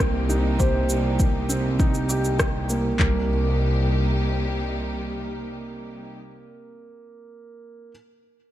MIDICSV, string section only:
0, 0, Header, 1, 2, 480
1, 0, Start_track
1, 0, Key_signature, -3, "minor"
1, 0, Tempo, 600000
1, 479, Time_signature, 4, 2, 24, 8
1, 6812, End_track
2, 0, Start_track
2, 0, Title_t, "String section"
2, 0, Program_c, 0, 48
2, 0, Note_on_c, 0, 48, 86
2, 0, Note_on_c, 0, 55, 77
2, 0, Note_on_c, 0, 58, 75
2, 0, Note_on_c, 0, 63, 75
2, 0, Note_on_c, 0, 67, 74
2, 2367, Note_off_c, 0, 48, 0
2, 2367, Note_off_c, 0, 55, 0
2, 2368, Note_off_c, 0, 63, 0
2, 2370, Note_off_c, 0, 67, 0
2, 2371, Note_off_c, 0, 58, 0
2, 2393, Note_on_c, 0, 63, 75
2, 2395, Note_on_c, 0, 55, 75
2, 2395, Note_on_c, 0, 58, 72
2, 2395, Note_on_c, 0, 67, 86
2, 2397, Note_on_c, 0, 48, 82
2, 4924, Note_off_c, 0, 63, 0
2, 4925, Note_off_c, 0, 55, 0
2, 4925, Note_off_c, 0, 58, 0
2, 4925, Note_off_c, 0, 67, 0
2, 4926, Note_off_c, 0, 48, 0
2, 6812, End_track
0, 0, End_of_file